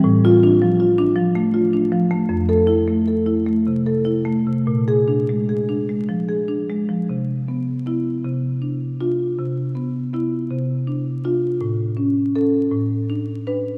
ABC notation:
X:1
M:6/8
L:1/16
Q:3/8=53
K:Ddor
V:1 name="Marimba"
z F2 z8 z | z A2 z8 z | z _A2 z8 z | z4 E2 z4 F2 |
z4 E2 z4 F2 | z4 A2 z4 B2 |]
V:2 name="Marimba"
A,,2 D F, F D F, A, F D F, A, | F,,2 E A, A E A, C, A E A, C, | _B,,2 D _A, _A D A, F, A D A, F, | C,2 B,2 B,2 C,2 D2 D2 |
C,2 B,2 B,2 C,2 D2 D2 | A,,2 ^C2 C2 A,,2 D2 D2 |]